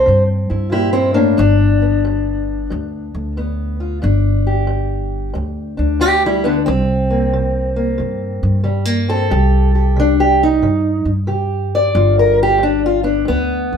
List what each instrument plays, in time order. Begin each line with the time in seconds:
Already playing: steel-string acoustic guitar C4 C5
0.06 upright bass G2, steel-string acoustic guitar C3
0.50 upright bass G2, steel-string acoustic guitar E4
0.72 steel-string acoustic guitar A#2 E4 G4
0.93 steel-string acoustic guitar C4 E4
1.14 steel-string acoustic guitar A2 A#3 D4
1.37 upright bass G1, steel-string acoustic guitar G2 D4
1.82 steel-string acoustic guitar B3
2.05 steel-string acoustic guitar G2
2.70 upright bass D2, steel-string acoustic guitar G2
3.14 upright bass D2
3.37 steel-string acoustic guitar G2 B3
3.80 steel-string acoustic guitar F4
4.02 upright bass G1, steel-string acoustic guitar G2 D4
4.47 steel-string acoustic guitar G4
4.67 steel-string acoustic guitar G2
5.34 upright bass D2, steel-string acoustic guitar G2
5.77 upright bass D2, steel-string acoustic guitar D4
6.00 steel-string acoustic guitar G2 B3 G4
6.26 steel-string acoustic guitar G3 E4
6.44 steel-string acoustic guitar D3 B3 D4
6.66 upright bass C2, steel-string acoustic guitar C3 C4
7.10 steel-string acoustic guitar A#3
7.33 steel-string acoustic guitar C3
7.76 steel-string acoustic guitar A#3
7.98 upright bass G2, steel-string acoustic guitar C3
8.43 upright bass G2
8.64 steel-string acoustic guitar C3 G3
8.85 steel-string acoustic guitar A#3
9.09 steel-string acoustic guitar C4 A4
9.30 upright bass C2, steel-string acoustic guitar C3 G4
9.75 steel-string acoustic guitar G4
9.96 steel-string acoustic guitar C3 D4
10.20 steel-string acoustic guitar G4
10.43 steel-string acoustic guitar D#4
10.62 upright bass G2, steel-string acoustic guitar C3
11.05 upright bass G2
11.27 steel-string acoustic guitar C3 G4
11.75 steel-string acoustic guitar D5
11.95 upright bass G1, steel-string acoustic guitar G2 F4
12.19 steel-string acoustic guitar A#4
12.43 steel-string acoustic guitar G4
12.58 steel-string acoustic guitar G2
12.63 steel-string acoustic guitar D4
12.86 steel-string acoustic guitar F4
13.03 steel-string acoustic guitar B3 D4
13.25 upright bass D2, steel-string acoustic guitar G2 B3
13.73 upright bass D2